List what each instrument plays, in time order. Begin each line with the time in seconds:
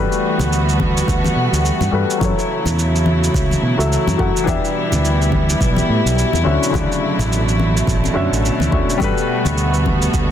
Already playing: string section E3 G3 A3 B3 F#4, grand piano G3 F#4 A4 B4
0.12 cabasa
0.39 fretless electric bass D2, high conga, low conga, cabasa
0.52 cabasa
0.69 cabasa
0.80 kick, high conga
0.97 cabasa
1.08 fretless electric bass D2, kick, cabasa
1.24 high conga, cabasa
1.36 fretless electric bass B2
1.53 fretless electric bass D2, cabasa
1.65 cabasa
1.80 fretless electric bass G2, high conga, cabasa
1.91 fretless electric bass G2, grand piano G3 F#4 A4 B4
2.10 cabasa
2.18 fretless electric bass F#2, string section C#3 E3 F#3 E4, grand piano F#3 F#4, kick, high conga
2.22 grand piano A4 C#5, cabasa
2.39 cabasa
2.65 fretless electric bass E2, high conga, low conga, cabasa
2.79 cabasa
2.96 cabasa
3.06 high conga
3.24 cabasa
3.34 fretless electric bass C#2, kick, cabasa
3.51 high conga, cabasa
3.63 fretless electric bass B2
3.77 fretless electric bass C#2, grand piano F#3 F#4 A4 E5, cabasa
3.92 cabasa
4.07 fretless electric bass F#2, high conga, cabasa
4.17 fretless electric bass F#2, grand piano F#3 F#4 A4 F#5, kick
4.37 cabasa
4.44 fretless electric bass E2, grand piano E3 D4, kick
4.48 string section B2 G3 B3, grand piano G4 E5, high conga, cabasa
4.65 cabasa
4.92 fretless electric bass D2, high conga, low conga, cabasa
5.05 cabasa
5.22 cabasa
5.32 kick, high conga
5.49 cabasa
5.61 fretless electric bass B1, kick, cabasa
5.77 high conga, cabasa
5.89 fretless electric bass A2
6.06 fretless electric bass B1, cabasa
6.18 cabasa
6.33 fretless electric bass E2, high conga, cabasa
6.44 fretless electric bass D2, grand piano D3 C#4 F#4 E5, string section F#3 A3
6.63 cabasa
6.70 fretless electric bass D2, grand piano C#3 D3, kick
6.74 grand piano F#4 D5, high conga, cabasa
6.92 cabasa
7.19 fretless electric bass A1, high conga, low conga, cabasa
7.32 cabasa
7.48 cabasa
7.60 high conga
7.77 cabasa
7.87 fretless electric bass A1, kick, cabasa
8.04 high conga, cabasa
8.14 fretless electric bass F#2, grand piano D3 C#4 F#4 E5
8.32 fretless electric bass A1, cabasa
8.45 cabasa
8.60 fretless electric bass D2, high conga, cabasa
8.71 fretless electric bass D2, grand piano D3 C#4 F#4 E5, kick
8.90 cabasa
8.98 fretless electric bass G2, grand piano G3 F#4 A4, string section G3 B3 F#4, kick, high conga, cabasa
9.04 grand piano B4
9.18 cabasa
9.45 fretless electric bass D2, high conga, low conga, cabasa
9.58 cabasa
9.74 cabasa
9.85 kick, high conga
10.02 cabasa
10.14 fretless electric bass D2, kick, cabasa